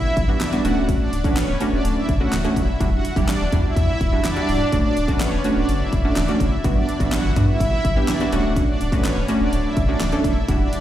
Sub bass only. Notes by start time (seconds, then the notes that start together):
0.17 G1
0.64 D1
1.12 D1
1.48 D1
1.72 E1
1.84 D1
2.09 F#1
2.32 D1
2.56 D#1
2.81 E1
3.16 E1
3.40 E1
3.53 E2
3.77 E2
4.01 E1
4.49 C#1
4.73 D1
4.96 D1
5.32 E1
5.56 D1
5.68 F#1
5.93 E1
6.16 D1
6.40 F#1
6.64 G1
7.00 G1
7.24 G1
7.37 G2
7.60 G1
7.85 G1
8.32 D1
8.81 D1
9.16 D1
9.40 E1
9.53 D1
9.77 F#1
10.01 D1
10.24 D#1
10.48 E1